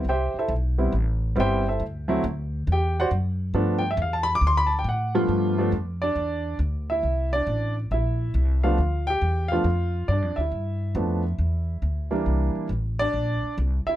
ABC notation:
X:1
M:4/4
L:1/16
Q:"Swing" 1/4=138
K:Gmix
V:1 name="Grand piano"
[Gceg]2 [EAce]2 z8 [Gceg]2 [EAce]2 | z8 [Gg]2 [^Fcd^f]2 z4 | z2 g e f a b d' c' b a g ^f3 z | z6 [Dd]6 z2 [Ee]2- |
[Ee]2 [Dd]4 z2 [Ee]6 [Ff]2- | [Ff]2 [Gg]4 [Ff]6 [Dd]2 [Ee]2- | [Ee]12- [Ee]2 z2 | z6 [Dd]6 z2 [Ee]2 |]
V:2 name="Grand piano"
z6 [G,B,CE]2 z4 [G,B,CE]2 z2 | z2 [^F,A,CE]2 z12 | [F,A,B,D]2 z12 [G,,F,A,B,F]2- | [G,,F,A,B,F]2 [F,A,B,D]2 z12 |
z12 z2 [F,A,B,D]2 | z6 [F,A,B,D]2 z8 | z4 [F,A,B,D]2 z8 [E,G,_B,D]2- | [E,G,_B,D]4 z12 |]
V:3 name="Upright bass" clef=bass
C,,2 z2 B,,,4 A,,,4 G,,,4 | D,,4 D,,4 E,,4 ^F,,4 | G,,4 E,,4 D,,4 A,,4 | G,,4 F,,4 E,,4 D,,4 |
C,,4 A,,,4 _B,,,4 C,,4 | D,,4 E,,4 F,,4 (3G,,2 F,,2 D,,2 | G,,4 F,,4 E,,4 D,,4 | C,,2 z2 A,,,4 _B,,,2 z2 C,,2 z2 |]